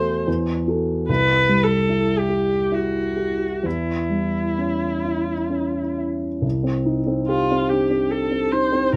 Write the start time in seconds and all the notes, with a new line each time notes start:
Already playing: E2 A3 F#4 A4 C5
0.27 E2
0.68 F#4 A4
1.09 C2 B4
1.49 G3
1.64 A4
1.89 E4
2.18 G4
2.29 G4
2.72 E4 F#4
3.16 G4
3.63 E2 E4
4.10 G3
4.58 C#4
5.05 E4
5.50 C#4
5.97 E4
6.42 C2
6.63 C4
6.86 D#4
7.07 C4
7.28 F4 G4
7.51 C4
7.69 D4 G4
7.91 C4
8.10 G4 A4
8.31 C4
8.52 D#4 C5
8.72 C4
8.93 C2